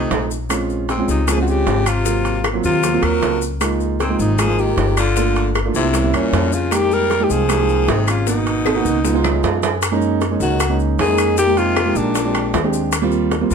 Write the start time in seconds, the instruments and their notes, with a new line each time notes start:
Already playing: baritone saxophone C3, grand piano A3 C4 D#4 F4, alto saxophone D#4
0.11 upright bass A#1, high bongo, low bongo, high timbale, low timbale, maracas
0.31 maracas
0.49 grand piano G#3 C4 C#4 F4, high bongo, high timbale, claves, maracas
0.70 high bongo, maracas
0.89 baritone saxophone G#2, alto saxophone C4, high bongo, high timbale, low timbale, maracas
0.98 grand piano G#3 C4 C#4 F4
1.08 upright bass C#2, baritone saxophone C3, alto saxophone D#4, high bongo, maracas
1.27 baritone saxophone F3, grand piano G#3 C4 C#4 F4, alto saxophone G#4, high bongo, high timbale, claves, maracas
1.37 baritone saxophone C#3, grand piano G#3 C4 C#4 F4
1.42 alto saxophone F#4
1.47 baritone saxophone C#3, alto saxophone G4, high bongo, maracas
1.66 upright bass G#1, high bongo, low bongo, high timbale, low timbale, maracas
1.86 baritone saxophone C3, alto saxophone F4, high timbale, claves, maracas
2.05 grand piano F#3 A#3 C4 F4, high bongo, maracas
2.25 high bongo, high timbale, maracas
2.44 high bongo, high timbale, low timbale, claves, maracas
2.53 grand piano F#3 A#3 C4 F4
2.64 upright bass D#2, baritone saxophone C3, alto saxophone F4, high bongo, maracas
2.82 grand piano F#3 A#3 C4 F4, high bongo, high timbale, maracas
2.92 grand piano F#3 A#3 C4 F4
3.02 upright bass D#2, baritone saxophone F#3, alto saxophone A#4, high bongo, high timbale, claves, maracas
3.21 upright bass C#2, high bongo, low bongo, high timbale, low timbale, maracas
3.42 maracas
3.61 grand piano G#3 A#3 D#4 F4, high bongo, high timbale, claves, maracas
3.80 high bongo, maracas
4.00 baritone saxophone G#2, alto saxophone C4, high bongo, high timbale, low timbale, maracas
4.09 grand piano G#3 A#3 D#4 F4
4.19 upright bass G#1, baritone saxophone C3, alto saxophone D#4, maracas
4.39 baritone saxophone F3, grand piano G#3 A#3 D#4 F4, alto saxophone G#4, high bongo, high timbale, claves, maracas
4.48 grand piano G#3 A#3 D#4 F4
4.58 baritone saxophone D#3, alto saxophone G4, high bongo, maracas
4.77 upright bass G1, high bongo, low bongo, high timbale, low timbale, maracas
4.97 baritone saxophone D3, alto saxophone F4, high timbale, claves, maracas
5.16 grand piano A3 A#3 D4 F4, high bongo, maracas
5.36 high bongo, high timbale, maracas
5.55 high bongo, high timbale, low timbale, claves, maracas
5.65 grand piano A3 A#3 D4 F4
5.74 upright bass C2, baritone saxophone C3, alto saxophone E4, high bongo, maracas
5.94 grand piano G3 A#3 C#4 E4, high bongo, high timbale, maracas
6.04 grand piano G3 A#3 C#4 E4
6.13 upright bass E2, baritone saxophone A#2, alto saxophone C#4, high bongo, high timbale, claves, maracas
6.33 upright bass F2, high bongo, low bongo, high timbale, low timbale, maracas
6.52 baritone saxophone C#3, alto saxophone F4, maracas
6.71 baritone saxophone D#3, grand piano G#3 A#3 D#4 G4, alto saxophone G4, high bongo, high timbale, claves, maracas
6.91 baritone saxophone G3, alto saxophone A#4, high bongo, maracas
7.10 high bongo, high timbale, low timbale, maracas
7.20 baritone saxophone D#3, grand piano G#3 A#3 D#4 G4
7.24 alto saxophone G4
7.30 upright bass C2, baritone saxophone F3, alto saxophone G#4, high bongo, maracas
7.49 grand piano G#3 A#3 D#4 G4, high bongo, high timbale, claves, maracas
7.59 grand piano G#3 A#3 D#4 G4
7.69 high bongo, maracas
7.88 upright bass G#1, baritone saxophone C3, alto saxophone D#4, high bongo, low bongo, high timbale, low timbale, maracas
8.07 baritone saxophone C#3, alto saxophone F4, high timbale, claves, maracas
8.27 baritone saxophone B2, grand piano A#3 B3 D#4 F#4, alto saxophone D#4, high bongo, maracas
8.46 high bongo, high timbale, maracas
8.66 high bongo, high timbale, claves, maracas
8.75 grand piano A#3 B3 D#4 F#4
8.85 upright bass C#2, high bongo, maracas
9.04 grand piano G#3 B3 D#4 F4, high bongo, maracas
9.14 grand piano G#3 B3 D#4 F4
9.24 grand piano C#5, high bongo, low timbale, claves, maracas
9.43 upright bass F#2, grand piano F5, high bongo, low bongo, low timbale, maracas
9.63 grand piano G#5, low timbale, maracas
9.82 high bongo, high timbale, claves, maracas
9.91 grand piano G#3 A#3 C#4 D#4
10.02 high bongo, maracas
10.21 high bongo, high timbale, low timbale, maracas
10.31 grand piano G#3 A#3 C#4 D#4
10.40 upright bass C#2, baritone saxophone D#3, alto saxophone F#4, high bongo, maracas
10.60 high bongo, high timbale, claves, maracas
10.69 grand piano G#3 A#3 C#4 D#4
10.80 high bongo, maracas
10.98 upright bass F2, baritone saxophone D#3, alto saxophone G#4, high bongo, low bongo, high timbale, low timbale, maracas
11.08 grand piano G#3 A#3 C#4 D#4
11.18 high timbale, claves, maracas
11.37 baritone saxophone D#3, alto saxophone G4, high bongo, maracas
11.47 grand piano G#3 A#3 D#4 G4
11.57 baritone saxophone C3, alto saxophone F4, high bongo, high timbale, maracas
11.76 high bongo, high timbale, low timbale, claves, maracas
11.85 grand piano G#3 A#3 D#4 G4
11.95 upright bass A#1, baritone saxophone A#2, alto saxophone D4, high bongo, maracas
12.15 high bongo, high timbale, maracas
12.24 grand piano G#3 C4 D4 G4
12.35 high timbale, claves, maracas
12.53 upright bass D#2, high bongo, low bongo, high timbale, low timbale, maracas
12.63 grand piano G#3 C4 D4 G4
12.73 maracas
12.92 high bongo, high timbale, claves, maracas
13.02 grand piano G3 A#3 C4 F4
13.12 high bongo, maracas
13.31 high bongo, high timbale, low timbale, maracas
13.41 grand piano G3 A#3 C4 F4
13.50 upright bass D#2, baritone saxophone C3, high bongo, maracas